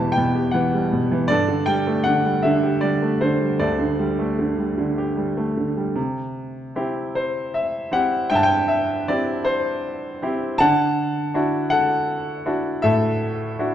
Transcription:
0.00 1.26 E2 soft
0.00 0.17 B2 soft
0.00 0.54 E3 soft
0.00 0.73 G3 soft
0.00 0.12 B4 medium
0.00 0.12 G5 medium
0.00 0.13 A5 medium
0.00 1.31 B5 medium
0.12 0.53 G5 medium
0.17 0.91 B2 soft
0.35 1.27 G4 soft
0.51 1.10 E3 soft
0.51 0.88 F#5 medium
0.74 1.29 G3 soft
0.92 1.29 B2 soft
1.11 1.29 E3 soft
1.28 3.55 G2 medium
1.28 2.40 A4 medium
1.28 1.68 D5 medium
1.48 2.05 D3 soft
1.66 2.24 G3 soft
1.66 2.06 G5 medium
1.87 3.01 A3 soft
2.04 2.43 D3 soft
2.04 2.40 F#5 medium
2.25 2.81 G3 soft
2.42 3.20 D3 medium
2.42 2.79 E5 medium
2.63 4.14 G4 soft
2.81 3.40 G3 soft
2.81 3.21 D5 medium
3.02 4.17 A3 soft
3.21 3.78 D3 soft
3.21 3.61 C5 medium
3.41 3.98 G3 soft
3.60 5.93 D2 soft
3.60 5.54 A4 soft
3.60 5.53 D5 medium
3.79 4.37 D3 soft
3.99 4.57 G3 soft
4.19 5.36 A3 soft
4.39 4.76 D3 soft
4.58 5.16 G3 soft
4.78 5.56 D3 soft
4.98 5.94 G4 soft
5.17 5.75 G3 soft
5.37 5.95 A3 soft
5.57 5.96 D3 soft
5.77 5.96 G3 soft
5.95 8.26 C3 soft
6.76 7.51 C4 soft
6.76 7.51 E4 soft
6.76 7.51 G4 soft
7.15 7.51 C5 medium
7.54 7.90 E5 medium
7.92 8.67 C4 soft
7.92 8.67 E4 soft
7.92 8.67 G4 soft
7.92 8.32 F#5 medium
8.30 10.55 G2 soft
8.30 8.66 E5 medium
8.30 8.37 G5 medium
8.35 8.43 A5 medium
8.43 8.70 G5 medium
8.68 9.04 E5 medium
9.08 9.82 C4 soft
9.08 9.82 E4 soft
9.08 9.83 G4 soft
9.08 9.47 D5 medium
9.45 10.26 C5 medium
10.22 10.58 C4 soft
10.22 10.59 E4 soft
10.22 10.59 G4 soft
10.58 12.80 D3 medium
10.58 11.68 F#5 medium
10.58 11.74 A5 loud
11.34 12.06 D4 soft
11.34 12.07 E4 soft
11.34 12.07 F#4 soft
11.70 12.79 A4 medium
11.70 12.86 F#5 medium
12.46 13.19 D4 soft
12.46 13.19 E4 soft
12.46 13.19 F#4 soft
12.82 13.75 A2 medium
12.82 13.75 A4 medium
12.82 13.75 E5 medium
13.59 13.75 D4 soft
13.59 13.75 E4 soft
13.59 13.75 F#4 soft

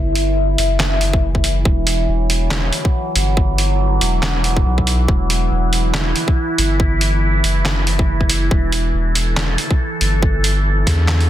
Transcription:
0.00 0.57 G1 loud
0.00 11.30 E3 medium
0.00 1.68 E4 medium
0.15 closed hi-hat medium
0.58 1.64 F#1 loud
0.58 closed hi-hat medium
0.80 snare loud
0.80 clap medium
1.01 closed hi-hat medium
1.13 kick loud
1.35 kick medium
1.44 closed hi-hat medium
1.65 2.07 E1 loud
1.65 5.11 F#3 medium
1.65 kick loud
1.87 closed hi-hat medium
2.08 2.71 E1 loud
2.30 closed hi-hat medium
2.51 snare loud
2.51 clap medium
2.73 closed hi-hat medium
2.85 kick loud
3.16 4.00 G1 loud
3.16 closed hi-hat medium
3.37 kick loud
3.58 closed hi-hat medium
4.01 4.64 E1 loud
4.01 closed hi-hat medium
4.23 snare loud
4.23 clap medium
4.44 closed hi-hat medium
4.56 kick loud
4.66 5.07 B1 loud
4.78 kick medium
4.87 closed hi-hat medium
5.08 5.50 E1 loud
5.08 8.54 E4 medium
5.08 kick loud
5.30 closed hi-hat medium
5.51 6.14 E1 loud
5.73 closed hi-hat medium
5.94 snare loud
5.94 clap medium
6.16 closed hi-hat medium
6.28 kick loud
6.58 7.43 G1 loud
6.58 closed hi-hat medium
6.80 kick loud
7.01 closed hi-hat medium
7.44 8.50 F#1 loud
7.44 closed hi-hat medium
7.65 snare loud
7.65 clap medium
7.87 closed hi-hat medium
7.99 kick loud
8.21 kick medium
8.30 closed hi-hat medium
8.51 8.93 E1 loud
8.51 11.30 A4 medium
8.51 kick loud
8.72 closed hi-hat medium
8.94 9.57 E1 loud
9.15 closed hi-hat medium
9.37 snare loud
9.37 clap medium
9.58 closed hi-hat medium
9.71 kick loud
10.01 10.85 G1 loud
10.01 closed hi-hat medium
10.22 kick loud
10.44 closed hi-hat medium
10.87 11.30 E2 loud
10.87 kick medium
10.87 snare medium
10.87 closed hi-hat medium
11.08 snare loud
11.08 clap medium
11.21 closed hi-hat soft

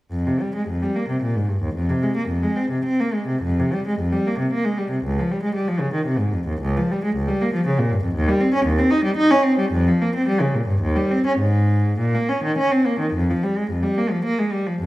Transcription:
0.11 0.25 F2 soft
0.27 0.41 C3 soft
0.41 0.55 G3 soft
0.55 0.69 G#3 soft
0.68 0.82 F2 soft
0.83 0.96 G3 soft
0.96 1.10 A#3 soft
1.09 1.23 C3 soft
1.23 1.36 A#2 soft
1.36 1.50 G#2 soft
1.49 1.63 G2 soft
1.63 1.76 D#2 soft
1.75 1.89 F2 medium
1.89 2.03 C3 soft
2.03 2.17 G#3 soft
2.17 2.30 A#3 soft
2.29 2.43 F2 soft
2.43 2.57 G#3 soft
2.56 2.71 C4 soft
2.70 2.84 C3 soft
2.85 2.99 C4 medium
3.00 3.14 A#3 soft
3.14 3.28 G#3 soft
3.27 3.42 C3 soft
3.42 3.57 F2 medium
3.60 3.73 C3 soft
3.73 3.86 G3 soft
3.87 3.99 G#3 soft
3.99 4.12 F2 soft
4.13 4.25 G3 soft
4.27 4.39 A#3 soft
4.39 4.52 C3 soft
4.53 4.65 A#3 medium
4.65 4.78 G#3 soft
4.78 4.91 G3 soft
4.90 5.03 C3 soft
5.04 5.16 C#2 medium
5.19 5.30 F3 soft
5.31 5.43 G3 soft
5.43 5.55 G#3 soft
5.55 5.67 G3 medium
5.68 5.80 F3 soft
5.80 5.92 C#3 soft
5.94 6.05 D#3 soft
6.06 6.18 C3 medium
6.19 6.32 G#2 soft
6.34 6.46 F2 soft
6.47 6.60 D#2 soft
6.61 6.74 C#2 medium
6.77 6.89 F3 soft
6.92 7.02 G3 soft
7.04 7.15 G#3 medium
7.16 7.27 C#2 medium
7.28 7.40 G3 soft
7.42 7.53 A#3 soft
7.54 7.65 F3 medium
7.67 7.78 C#3 medium
7.79 7.90 A#2 soft
7.91 8.03 G2 soft
8.03 8.15 F2 soft
8.15 8.27 D#2 medium
8.28 8.40 G3 soft
8.41 8.53 C4 soft
8.54 8.66 C#4 medium
8.66 8.78 D#2 medium
8.79 8.92 C4 medium
8.91 9.04 D#4 medium
9.04 9.17 G3 medium
9.17 9.30 D#4 medium
9.31 9.44 C#4 medium
9.44 9.58 C4 medium
9.58 9.72 G3 medium
9.72 9.86 F2 medium
9.88 10.01 F3 medium
10.01 10.15 A#3 medium
10.16 10.28 C4 medium
10.28 10.41 G3 medium
10.41 10.55 C#3 soft
10.55 10.69 A#2 soft
10.67 10.82 G2 soft
10.82 10.96 D#2 medium
10.96 11.10 G3 soft
11.11 11.25 C4 soft
11.27 11.40 C#4 soft
11.39 11.98 G#2 medium
11.99 12.14 A#2 medium
12.15 12.29 A#3 soft
12.29 12.43 C#4 soft
12.44 12.58 D#3 soft
12.58 12.72 C#4 medium
12.72 12.87 C4 soft
12.86 13.01 A#3 soft
13.00 13.14 D#3 soft
13.14 13.28 F2 medium
13.30 13.43 F3 soft
13.43 13.57 G3 soft
13.57 13.70 G#3 medium
13.71 13.84 F2 soft
13.83 13.97 G3 soft
13.98 14.11 A#3 soft
14.11 14.24 F3 soft
14.25 14.38 A#3 medium
14.39 14.52 G#3 soft
14.52 14.66 G3 soft
14.67 14.81 F3 soft
14.82 14.86 F2 medium

